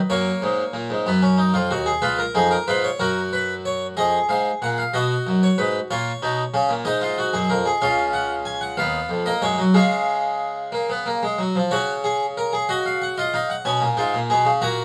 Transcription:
0.10 F#2 A#3 C#5
0.42 G#2
0.73 A#2
0.90 G#2
1.06 F#2 B3
1.22 C#4
1.38 D#4
1.54 F2 F4
1.71 D#2 F#4
1.86 G#4
2.02 C#2 F4 B4
2.18 A#4
2.35 F2 D#4 G#4
2.51 A#4
2.68 G#2 F4 B4
2.84 C#5
3.00 F#2 F#4 A#4
3.33 B4
3.65 C#5
3.97 F2 G#4 D#5
4.29 G#2 F5
4.62 A#2 F#5
4.78 F5
4.93 B2 F#4 D#5
5.27 F#2
5.43 C#5
5.58 G#2 B4
5.91 A#2 F4 C#5
6.22 B2 D#4
6.54 C#3 C#4
6.69 A#2
6.85 G#2 D#4 D#5
7.01 F4
7.18 F#4
7.33 F#2 G#4
7.50 F2 A#4
7.66 G#4
7.82 C#2 C#4 F4 F5
8.13 F#5
8.45 G#5
8.61 F#5
8.77 D#2 B3 F5
9.09 F2
9.26 A#3 D#5
9.42 F#2 G#3 C#5
9.58 F#3
9.74 C#3 G#3 G#4 F5
10.72 A#3
10.90 B3
11.06 A#3
11.23 G#3
11.38 F#3
11.55 F3
11.71 C#3 F#4 C#5
12.04 G#4
12.37 A#4
12.53 G#4
12.69 F#4 D#5
12.86 F5
13.02 F#5
13.18 F4 D#5
13.34 D#4 F5
13.50 F#5
13.65 B2 C#4 G#5
13.81 A#2
13.97 G#2 F4
14.14 A#2
14.30 B2 G#4
14.45 C#3
14.62 A#2 F#4 A#5

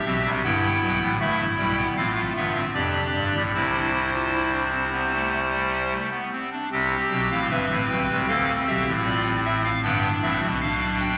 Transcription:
Already playing: G4 E5
0.05 B1 B2 C4
0.25 C2 C3
0.44 G1 G2 B3 E4 G5
0.82 B1 B2
1.01 A1 A2
1.20 G1 G2 A3 E4 E5
1.58 B1 B2 G3 G5
1.77 B3
1.97 A1 A2 C4 F4 F5
2.17 A3
2.36 G1 G2 B3 E5
2.55 C4
2.74 F1 F2 D4 G4 D5
3.14 G1 G2
3.34 A1 A2
3.54 C2 C3 C4 E4 C5
3.73 D4
3.93 E4
4.13 F4
4.32 E4
4.53 D4
4.72 C4
4.92 B3
5.12 A3
5.52 G3
5.92 A3
6.12 B3
6.32 C4
6.52 D4
6.72 C2 C3 C4 G4
7.11 B1 B2 G5
7.31 A1 A2 F5
7.50 G1 G2 B4 E5
7.70 A1 A2
7.89 B1 B2 G5
8.09 C2 C3
8.27 D2 D3 A4 F5
8.67 B1 B2 G4 E5
8.87 A1 A2
9.05 F4 D5
9.45 C4 E5
9.65 F5
9.83 G1 G2 B3 D4 G5
10.22 A1 A2 C4 E5
10.42 B1 B2
10.61 D4 F5
11.00 G5

